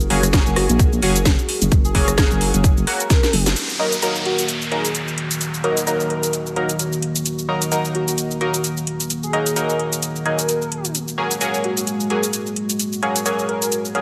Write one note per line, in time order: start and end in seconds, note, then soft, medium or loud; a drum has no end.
0.00 3.52 F#4 medium
0.00 3.52 G#4 medium
0.00 3.53 A#4 medium
0.00 shaker soft
0.10 0.44 F#1 loud
0.10 0.23 F#3 loud
0.10 0.23 A#3 medium
0.10 0.23 C#4 medium
0.10 0.23 G#4 loud
0.10 open hi-hat loud
0.23 cross-stick medium
0.23 closed hi-hat medium
0.23 shaker medium
0.33 1.00 F#3 medium
0.33 1.00 A#3 medium
0.33 1.00 C#4 medium
0.33 1.00 G#4 loud
0.33 kick loud
0.33 snare loud
0.33 closed hi-hat medium
0.33 shaker medium
0.46 0.67 F#1 loud
0.46 shaker soft
0.56 0.65 F#4 medium
0.56 cross-stick medium
0.56 open hi-hat loud
0.69 1.01 A#1 loud
0.69 0.76 F#4 medium
0.69 closed hi-hat medium
0.69 shaker medium
0.79 kick loud
0.79 closed hi-hat medium
0.79 shaker medium
0.93 shaker soft
1.02 1.37 F#1 loud
1.02 1.15 F#3 loud
1.02 1.15 A#3 medium
1.02 1.15 C#4 medium
1.02 1.11 F#4 medium
1.02 1.15 G#4 loud
1.02 open hi-hat loud
1.15 1.22 F#4 medium
1.15 closed hi-hat medium
1.15 shaker medium
1.25 kick loud
1.25 snare loud
1.25 closed hi-hat medium
1.25 shaker medium
1.39 shaker soft
1.49 open hi-hat loud
1.62 1.70 F#1 medium
1.62 closed hi-hat medium
1.62 shaker medium
1.72 1.93 F#1 loud
1.72 kick loud
1.72 closed hi-hat medium
1.72 shaker medium
1.85 2.49 G#4 medium
1.85 shaker soft
1.95 2.29 F#1 loud
1.95 2.07 F#3 medium
1.95 2.07 A#3 medium
1.95 2.07 C#4 medium
1.95 2.07 G#4 loud
1.95 kick medium
1.95 open hi-hat loud
2.08 cross-stick medium
2.08 closed hi-hat medium
2.08 shaker medium
2.18 2.85 F#3 medium
2.18 2.85 A#3 medium
2.18 2.85 C#4 medium
2.18 2.85 G#4 loud
2.18 kick loud
2.18 snare loud
2.18 closed hi-hat medium
2.18 shaker medium
2.31 2.52 F#1 loud
2.31 shaker soft
2.41 open hi-hat loud
2.54 2.86 F#1 loud
2.54 closed hi-hat medium
2.54 shaker medium
2.64 kick loud
2.64 closed hi-hat medium
2.64 shaker medium
2.77 shaker soft
2.87 3.00 F#3 medium
2.87 3.00 A#3 medium
2.87 3.00 C#4 medium
2.87 3.00 F#4 medium
2.87 open hi-hat loud
3.00 3.46 A#4 medium
3.00 closed hi-hat medium
3.00 shaker medium
3.10 kick loud
3.10 snare medium
3.10 closed hi-hat medium
3.10 shaker medium
3.23 snare medium
3.23 shaker soft
3.33 3.55 F#1 loud
3.33 open hi-hat loud
3.46 snare medium
3.46 closed hi-hat medium
3.46 shaker medium
3.56 10.91 D#3 medium
3.56 14.02 A#3 medium
3.56 10.91 F#4 medium
3.56 closed hi-hat medium
3.56 downlifter medium
3.56 shaker medium
3.69 shaker soft
3.79 3.92 F#3 medium
3.79 3.92 A#3 medium
3.79 3.92 D#4 medium
3.79 3.92 A#4 loud
3.92 closed hi-hat medium
3.92 shaker medium
4.02 4.69 F#3 loud
4.02 4.69 A#3 medium
4.02 4.69 D#4 medium
4.02 4.69 A#4 loud
4.02 closed hi-hat medium
4.02 shaker medium
4.15 shaker soft
4.25 4.34 F#4 medium
4.25 closed hi-hat soft
4.39 4.45 F#4 medium
4.39 closed hi-hat medium
4.39 shaker medium
4.48 closed hi-hat medium
4.48 shaker medium
4.62 shaker soft
4.72 4.84 F#3 medium
4.72 4.84 A#3 medium
4.72 4.84 D#4 medium
4.72 4.86 G#4 medium
4.72 4.84 A#4 loud
4.72 closed hi-hat soft
4.85 closed hi-hat medium
4.85 shaker medium
4.95 closed hi-hat medium
4.95 shaker medium
5.08 shaker soft
5.18 closed hi-hat medium
5.31 closed hi-hat soft
5.31 shaker medium
5.41 closed hi-hat medium
5.41 shaker soft
5.54 shaker soft
5.64 5.77 F#3 medium
5.64 5.77 A#3 medium
5.64 5.77 D#4 medium
5.64 5.77 A#4 loud
5.64 closed hi-hat soft
5.77 closed hi-hat medium
5.77 shaker medium
5.87 6.54 F#3 loud
5.87 6.54 A#3 medium
5.87 6.54 D#4 medium
5.87 6.54 A#4 loud
5.87 closed hi-hat soft
5.87 shaker medium
6.00 shaker soft
6.10 6.19 A#4 medium
6.10 closed hi-hat soft
6.23 6.30 A#4 medium
6.23 closed hi-hat soft
6.23 shaker medium
6.33 closed hi-hat medium
6.33 shaker medium
6.46 shaker soft
6.56 6.69 F#3 medium
6.56 6.69 A#3 medium
6.56 6.69 D#4 medium
6.56 6.69 A#4 loud
6.56 closed hi-hat soft
6.69 closed hi-hat medium
6.69 shaker medium
6.79 closed hi-hat medium
6.79 shaker medium
6.92 shaker soft
7.02 closed hi-hat medium
7.16 closed hi-hat soft
7.16 shaker medium
7.26 closed hi-hat medium
7.26 shaker medium
7.39 shaker soft
7.49 7.61 F#3 medium
7.49 7.61 A#3 medium
7.49 7.61 D#4 medium
7.49 7.61 A#4 loud
7.62 closed hi-hat medium
7.62 shaker medium
7.72 8.39 F#3 medium
7.72 8.39 A#3 medium
7.72 8.39 D#4 medium
7.72 8.39 A#4 loud
7.72 closed hi-hat soft
7.72 shaker medium
7.85 shaker soft
7.95 8.03 F#4 medium
7.95 closed hi-hat soft
8.08 8.14 F#4 medium
8.08 closed hi-hat soft
8.08 shaker medium
8.18 closed hi-hat medium
8.18 shaker soft
8.31 shaker soft
8.41 8.54 F#3 medium
8.41 8.54 A#3 medium
8.41 8.54 D#4 medium
8.41 8.49 F#4 medium
8.41 8.54 A#4 loud
8.41 closed hi-hat soft
8.54 8.60 F#4 medium
8.54 closed hi-hat soft
8.54 shaker medium
8.64 closed hi-hat medium
8.64 shaker medium
8.77 shaker soft
8.87 closed hi-hat medium
9.00 closed hi-hat soft
9.00 shaker medium
9.10 closed hi-hat medium
9.10 shaker medium
9.23 9.87 G#4 medium
9.23 shaker soft
9.33 9.46 F#3 medium
9.33 9.46 A#3 medium
9.33 9.46 D#4 medium
9.33 9.46 A#4 loud
9.33 closed hi-hat soft
9.46 closed hi-hat medium
9.46 shaker medium
9.56 10.23 F#3 medium
9.56 10.23 A#3 medium
9.56 10.23 D#4 medium
9.56 10.23 A#4 loud
9.56 closed hi-hat soft
9.56 shaker medium
9.69 shaker soft
9.79 closed hi-hat soft
9.93 closed hi-hat soft
9.93 shaker medium
10.02 closed hi-hat medium
10.02 shaker medium
10.16 shaker soft
10.26 10.38 F#3 medium
10.26 10.38 A#3 medium
10.26 10.38 D#4 medium
10.26 10.38 G#4 medium
10.26 closed hi-hat soft
10.39 10.85 A#4 medium
10.39 closed hi-hat soft
10.39 shaker medium
10.49 closed hi-hat medium
10.49 shaker medium
10.62 shaker soft
10.72 closed hi-hat medium
10.85 closed hi-hat soft
10.85 shaker medium
10.95 14.02 G#3 medium
10.95 14.02 F#4 medium
10.95 closed hi-hat medium
10.95 shaker medium
11.08 shaker soft
11.18 11.30 F#3 medium
11.18 11.30 A#3 medium
11.18 11.30 C#4 medium
11.18 11.30 G#4 loud
11.31 closed hi-hat medium
11.31 shaker medium
11.41 12.08 F#3 medium
11.41 12.08 A#3 medium
11.41 12.08 C#4 medium
11.41 12.08 G#4 loud
11.41 closed hi-hat soft
11.41 shaker medium
11.54 shaker soft
11.64 11.73 F#4 medium
11.64 closed hi-hat soft
11.77 11.84 F#4 medium
11.77 closed hi-hat soft
11.77 shaker medium
11.87 closed hi-hat medium
11.87 shaker medium
12.00 shaker soft
12.10 12.23 F#3 medium
12.10 12.23 A#3 medium
12.10 12.23 C#4 medium
12.10 12.24 G#4 medium
12.10 12.23 G#4 loud
12.10 closed hi-hat soft
12.23 closed hi-hat soft
12.23 shaker medium
12.33 closed hi-hat medium
12.33 shaker medium
12.46 shaker soft
12.56 closed hi-hat medium
12.70 closed hi-hat soft
12.70 shaker medium
12.79 closed hi-hat medium
12.79 shaker medium
12.93 shaker soft
13.03 13.15 F#3 loud
13.03 13.15 A#3 medium
13.03 13.15 C#4 medium
13.03 13.15 G#4 loud
13.03 closed hi-hat soft
13.16 closed hi-hat medium
13.16 shaker medium
13.26 13.92 F#3 medium
13.26 13.92 A#3 medium
13.26 13.92 C#4 medium
13.26 13.92 G#4 loud
13.26 closed hi-hat soft
13.26 shaker medium
13.39 shaker soft
13.49 13.57 A#4 medium
13.49 closed hi-hat soft
13.62 13.68 A#4 medium
13.62 closed hi-hat soft
13.62 shaker medium
13.72 closed hi-hat medium
13.72 shaker medium
13.85 shaker soft
13.95 14.02 F#3 medium
13.95 14.02 A#3 medium
13.95 14.02 C#4 medium
13.95 14.02 G#4 loud
13.95 closed hi-hat soft